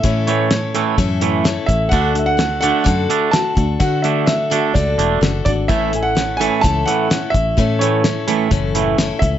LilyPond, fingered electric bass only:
\new Staff \with { instrumentName = "Fingered electric bass" } { \clef bass \time 4/4 \key a \major \tempo 4 = 128 a,2 fis,4. a,,8 | d,2 fis,8 r4 d,8 | d2 cis,8 e,,8 fis,,8 gis,,8 | a,,2 cis,8 r4 a,,8 |
a,2 fis,,4. cis,8 | }